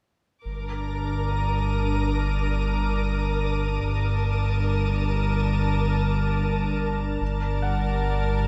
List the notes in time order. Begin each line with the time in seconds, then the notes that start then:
0.45 G1 G2 D4 A#4 A#5 D6
1.30 A#5 D#6
3.83 G1 G2 D4 A#4 A5
7.21 G1 G2 A#4 D5 A5
7.62 F#5